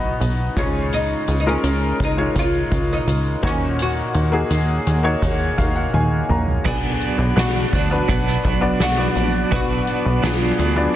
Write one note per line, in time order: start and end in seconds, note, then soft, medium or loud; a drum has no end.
0.00 0.14 B1 medium
0.00 0.58 B2 medium
0.00 0.58 F#3 medium
0.00 0.58 B3 medium
0.00 0.57 D#4 medium
0.00 0.58 F#4 medium
0.00 0.59 D#5 medium
0.21 0.50 B1 medium
0.21 closed hi-hat medium
0.56 1.15 C#2 medium
0.56 1.60 C#3 medium
0.56 1.34 G#3 medium
0.56 0.93 C#4 medium
0.56 1.34 D#4 medium
0.56 1.34 F4 medium
0.56 1.34 C#5 medium
0.56 kick medium
0.56 closed hi-hat medium
0.93 1.36 D#4 medium
0.93 closed hi-hat medium
1.27 1.57 C#2 medium
1.27 closed hi-hat medium
1.40 1.46 D#4 medium
1.46 2.08 G#3 medium
1.46 1.97 C#4 medium
1.46 2.08 D#4 medium
1.46 2.08 F4 medium
1.46 2.09 A#4 medium
1.64 1.93 C#2 medium
1.64 closed hi-hat medium
2.00 2.29 C#2 medium
2.00 2.38 D#4 medium
2.00 kick medium
2.00 closed hi-hat medium
2.17 3.42 G#3 medium
2.17 3.42 D#4 medium
2.17 3.42 F4 medium
2.17 3.42 C#5 medium
2.35 2.65 C#2 loud
2.35 2.92 F4 medium
2.35 kick medium
2.35 closed hi-hat medium
2.72 3.01 C#2 medium
2.72 kick medium
2.72 closed hi-hat medium
2.93 3.46 D#4 medium
3.07 3.36 C#2 medium
3.07 closed hi-hat medium
3.43 4.02 D#2 medium
3.43 4.47 A#2 medium
3.43 4.21 A#3 medium
3.43 4.21 D#4 medium
3.43 4.21 F#4 medium
3.43 4.21 C#5 medium
3.43 kick medium
3.43 closed hi-hat medium
3.47 3.78 C#4 medium
3.79 5.91 F#4 medium
3.79 closed hi-hat medium
4.14 4.44 D#2 medium
4.14 closed hi-hat medium
4.32 4.94 A#3 medium
4.32 4.95 D#4 medium
4.32 4.95 F#4 medium
4.32 4.95 G#4 medium
4.50 4.80 D#2 medium
4.50 closed hi-hat medium
4.87 5.16 D#2 medium
4.87 closed hi-hat medium
5.03 6.28 A#3 medium
5.03 6.28 D#4 medium
5.03 6.28 F#4 medium
5.03 6.29 C#5 medium
5.22 5.52 D#2 medium
5.22 kick medium
5.22 closed hi-hat medium
5.58 5.87 D#2 medium
5.58 5.75 F5 medium
5.58 kick medium
5.58 closed hi-hat medium
5.76 5.92 F#5 medium
5.93 6.23 D#2 medium
5.93 6.27 G#5 medium
5.93 high tom soft
6.29 6.59 A#1 medium
6.29 6.63 A#5 medium
6.29 mid tom medium
6.48 floor tom medium
6.65 6.95 B1 medium
6.65 7.01 B2 medium
6.65 7.01 F#3 medium
6.65 10.96 F#3 medium
6.65 7.01 B3 medium
6.65 7.28 B3 medium
6.65 7.01 D4 medium
6.65 7.28 D4 medium
6.65 6.99 F#4 medium
6.65 7.28 F#4 medium
6.65 7.34 G#4 medium
6.65 10.96 D5 medium
6.65 7.28 D5 medium
6.65 10.96 B5 medium
6.65 10.96 D6 medium
6.65 kick medium
6.65 crash medium
7.00 7.36 B3 soft
7.00 7.37 D4 soft
7.00 7.37 F#4 soft
7.00 closed hi-hat medium
7.18 7.33 B1 medium
7.36 7.66 B1 loud
7.36 7.72 F#3 medium
7.36 7.83 B3 medium
7.36 7.73 B3 medium
7.36 7.83 D4 medium
7.36 7.72 D4 medium
7.36 7.84 F#4 medium
7.36 7.71 F#4 medium
7.36 7.84 D5 medium
7.36 snare loud
7.36 closed hi-hat medium
7.72 8.02 D2 medium
7.72 8.08 B3 soft
7.72 8.08 D4 soft
7.72 8.85 D4 medium
7.72 8.08 F#4 soft
7.72 kick medium
7.72 closed hi-hat medium
7.91 8.53 B3 medium
7.91 8.53 D4 medium
7.91 8.53 F#4 medium
7.91 8.54 B4 medium
8.08 8.38 B1 medium
8.08 8.44 B2 medium
8.08 8.44 F#3 medium
8.08 8.44 B3 medium
8.08 8.44 D4 medium
8.08 8.43 F#4 medium
8.08 kick medium
8.08 closed hi-hat medium
8.26 snare soft
8.44 8.74 B1 loud
8.44 8.80 B3 soft
8.44 8.80 D4 soft
8.44 8.80 F#4 medium
8.44 kick medium
8.44 closed hi-hat medium
8.61 8.93 B3 medium
8.61 8.93 D4 medium
8.61 8.93 F#4 medium
8.61 8.93 D5 medium
8.80 9.10 B1 loud
8.80 9.16 F#3 medium
8.80 9.16 B3 medium
8.80 9.15 D4 medium
8.80 9.14 F#4 medium
8.80 9.54 F#4 medium
8.80 snare medium
8.80 closed hi-hat medium
8.97 9.44 B3 medium
8.97 9.45 D4 medium
8.97 9.45 F#4 medium
8.97 9.45 D5 medium
9.15 9.45 A#1 medium
9.15 9.51 B3 soft
9.15 9.51 D4 soft
9.15 9.51 F#4 medium
9.15 closed hi-hat medium
9.51 9.81 B1 loud
9.51 9.87 B2 medium
9.51 9.88 F#3 medium
9.51 9.88 B3 medium
9.51 10.14 B3 medium
9.51 9.87 D4 medium
9.51 10.14 D4 medium
9.51 9.86 F#4 medium
9.51 10.14 F#4 medium
9.51 10.26 F#4 medium
9.51 10.15 B4 medium
9.51 kick loud
9.51 closed hi-hat medium
9.87 10.22 B3 soft
9.87 10.23 D4 soft
9.87 10.23 F#4 medium
9.87 closed hi-hat medium
10.05 10.20 B1 medium
10.23 10.53 B1 medium
10.23 10.59 F#3 medium
10.23 10.71 F#3 medium
10.23 10.59 B3 medium
10.23 10.70 B3 medium
10.23 10.70 D4 medium
10.23 10.58 D4 medium
10.23 10.96 F4 medium
10.23 10.57 F#4 medium
10.23 10.70 G#4 medium
10.23 snare loud
10.23 closed hi-hat medium
10.59 10.88 D2 medium
10.59 10.94 B3 soft
10.59 10.94 D4 medium
10.59 10.94 F#4 medium
10.59 closed hi-hat medium
10.76 10.96 B3 medium
10.76 10.96 D4 medium
10.76 10.96 F#4 medium
10.76 10.96 D5 medium